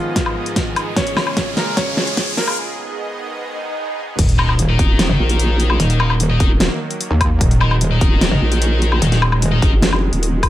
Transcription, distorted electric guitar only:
4.39 4.50 D#4 medium
4.39 4.50 A#4 medium
4.39 4.50 D#5 loud
4.69 5.97 D#4 medium
4.69 5.98 A#4 medium
4.69 5.98 D#5 loud
6.00 6.11 D#4 medium
6.00 6.11 A#4 medium
6.00 6.11 D#5 medium
6.30 6.49 D#4 medium
6.30 6.49 A#4 medium
6.30 6.49 D#5 medium
7.61 7.73 D#4 medium
7.61 7.73 A#4 medium
7.61 7.73 D#5 loud
7.91 9.20 D#4 medium
7.91 9.20 A#4 medium
7.91 9.20 D#5 medium
9.52 9.71 D#4 medium
9.52 9.71 A#4 medium
9.52 9.71 D#5 medium

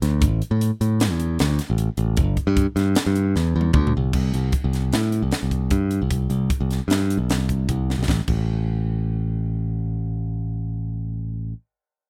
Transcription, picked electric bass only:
0.02 0.24 D2 medium
0.22 0.41 A1 loud
0.51 0.70 A2 medium
0.81 1.11 A2 medium
1.11 1.38 E2 medium
1.40 1.59 D2 medium
1.70 1.88 A1 medium
1.98 2.19 A1 medium
2.17 2.36 G1 loud
2.47 2.66 G2 loud
2.76 2.95 G2 medium
3.06 3.34 G2 medium
3.36 3.54 E2 medium
3.56 3.73 E2 medium
3.74 3.92 D2 medium
3.97 4.13 C2 medium
4.14 4.33 C2 medium
4.34 4.53 C2 medium
4.64 4.92 C2 medium
4.93 5.21 A2 medium
5.22 5.32 C2 medium
5.43 5.70 C2 medium
5.71 5.99 G2 medium
6.02 6.29 C2 medium
6.30 6.49 C2 medium
6.60 6.79 C2 medium
6.88 7.17 G2 medium
7.17 7.38 B1 medium
7.38 7.67 C2 medium
7.69 7.97 C2 medium
7.98 8.08 B1 medium
8.08 8.20 A1 medium
8.28 11.52 A1 medium

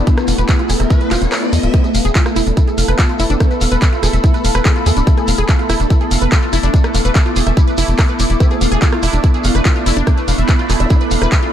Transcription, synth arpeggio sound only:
0.07 0.14 D4 medium
0.18 0.25 B4 medium
0.28 0.38 F5 medium
0.38 0.48 B4 loud
0.49 0.53 B4 medium
0.59 0.63 F4 medium
0.70 0.74 G#4 medium
0.80 0.84 E5 medium
0.90 1.00 E4 medium
1.01 1.08 B4 medium
1.11 1.18 F4 loud
1.22 1.29 F4 medium
1.32 1.39 F4 medium
1.43 1.47 E4 medium
1.53 1.60 E4 medium
1.63 1.70 F4 medium
1.74 1.78 E4 medium
1.84 1.88 G#4 medium
1.95 2.04 F5 medium
2.05 2.15 G#4 loud
2.15 2.22 F4 medium
2.26 2.30 F4 medium
2.36 2.43 E4 loud
2.47 2.54 D4 medium
2.57 2.67 E4 medium
2.68 2.72 G#4 medium
2.78 2.88 F5 medium
2.88 2.98 B4 loud
2.99 3.06 F4 medium
3.09 3.13 F4 medium
3.20 3.24 E4 loud
3.30 3.37 D4 loud
3.40 3.47 D4 medium
3.51 3.58 B4 medium
3.61 3.71 F5 medium
3.72 3.81 B4 loud
3.82 3.86 B4 medium
3.93 3.97 F4 medium
4.03 4.07 G#4 medium
4.13 4.18 E5 medium
4.24 4.34 E4 medium
4.34 4.41 B4 medium
4.45 4.54 F5 medium
4.55 4.65 B4 loud
4.65 4.72 G#4 medium
4.76 4.80 F4 medium
4.86 4.90 G#4 medium
4.97 5.04 D4 medium
5.07 5.11 E4 medium
5.17 5.22 G#4 medium
5.28 5.38 F5 medium
5.38 5.48 G#4 loud
5.49 5.56 F4 medium
5.59 5.63 F4 medium
5.70 5.77 E4 loud
5.80 5.87 D4 medium
5.90 6.00 E4 medium
6.01 6.05 G#4 medium
6.11 6.21 F5 medium
6.22 6.32 B4 loud
6.32 6.39 F4 medium
6.42 6.47 F4 medium
6.53 6.57 E4 loud
6.63 6.70 D4 loud
6.74 6.81 D4 medium
6.84 6.91 B4 medium
6.95 7.04 F5 medium
7.05 7.14 B4 loud
7.15 7.20 B4 medium
7.26 7.30 F4 medium
7.36 7.40 G#4 medium
7.47 7.51 E5 medium
7.57 7.67 E4 medium
7.67 7.75 B4 medium
7.78 7.87 E4 loud
7.88 7.95 E4 medium
7.99 8.06 E4 medium
8.09 8.16 B4 medium
8.20 8.29 E4 medium
8.30 8.37 E4 medium
8.40 8.45 E4 medium
8.51 8.55 G#4 medium
8.61 8.71 F5 medium
8.72 8.82 G#4 loud
8.82 8.89 F4 medium
8.92 8.97 F4 medium
9.03 9.10 E4 loud
9.13 9.20 D4 medium
9.24 9.34 E4 medium
9.34 9.38 G#4 medium
9.45 9.54 F5 medium
9.55 9.65 B4 loud
9.65 9.72 F4 medium
9.76 9.80 F4 medium
9.86 9.90 E4 loud
9.97 10.04 D4 loud
10.07 10.14 D4 medium
10.17 10.25 B4 medium
10.28 10.38 F5 medium
10.38 10.48 E5 medium
10.49 10.53 B4 medium
10.59 10.63 F4 medium
10.70 10.74 G#4 medium
10.80 10.84 E5 medium
10.90 11.00 E4 medium
11.01 11.08 B4 medium
11.11 11.21 F5 medium
11.22 11.32 B4 loud
11.32 11.39 G#4 medium
11.43 11.47 F4 medium

